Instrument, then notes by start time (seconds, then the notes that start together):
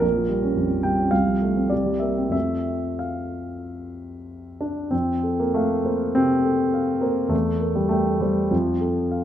grand piano
0.00 A#1 A#4
0.16 F3
0.29 G3
0.43 C#4
0.56 F2
0.70 F3
0.83 G3 G5
0.98 C#4
1.11 C2 F5
1.26 F3
1.42 A3
1.57 C4
1.70 C2 D5
1.86 G3
1.99 A#3 E5
2.17 C4
2.29 F2 F3 A3 C4 E5
2.99 F5
4.61 D4
4.91 F2 C4
5.23 A4
5.39 A#3
5.54 A3 F5
5.84 A#3 C5
6.15 C3 C4
6.44 A4
6.74 F5
7.01 A#3 C5
7.28 E2 A3
7.61 A#4
7.75 G3
7.89 A3 G5
8.21 G3 C5
8.51 F2 F3
8.81 A4
9.11 F5